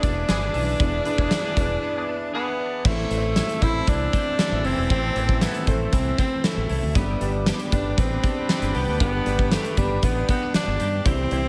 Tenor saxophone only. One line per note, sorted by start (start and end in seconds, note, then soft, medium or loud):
0.00 2.30 D4 loud
2.34 2.87 B3 medium
2.86 3.64 A3 loud
3.63 3.90 E4 loud
3.88 4.67 D4 loud
4.65 4.91 C4 medium
4.91 5.43 C4 loud
5.42 5.69 B3 medium
5.68 5.95 A3 medium
5.93 6.19 C4 medium
6.19 6.46 C4 medium
6.44 6.97 A3 medium
6.96 7.45 G3 medium
7.73 8.00 D4 medium
7.99 8.77 C4 medium
8.76 9.01 B3 medium
9.01 9.54 B3 loud
9.52 9.80 A3 medium
9.78 10.06 G3 medium
10.04 10.29 B3 medium
10.30 10.53 B3 medium
10.55 11.08 D4 loud
11.07 11.48 C4 loud